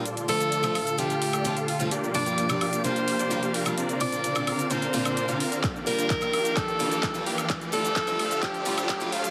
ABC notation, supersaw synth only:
X:1
M:4/4
L:1/16
Q:1/4=129
K:Gm
V:1 name="Supersaw synth"
[FAd]3 [FAd]3 [FAf]2 [FAf]3 [FAd]2 [FAf]3 | [B,DFGd]3 [B,DFGd]3 [B,DFGf]2 [B,DFGf]3 [B,DFGd]2 [B,DFGf]3 | [CDFBd]3 [CDFBd]3 [CDFBf]2 [CDFBf]3 [CDFBd]2 [CDFBf]3 | [B,DFGd]3 [B,DFGd]3 [B,DFGf]2 [B,DFGd]3 [B,DFGd]3 [B,DFGf]2 |
[A,DFGd]3 [A,DFGd]3 [A,DFGf]2 [A,DFGd]3 [A,DFGd]3 [A,DFGf]2 |]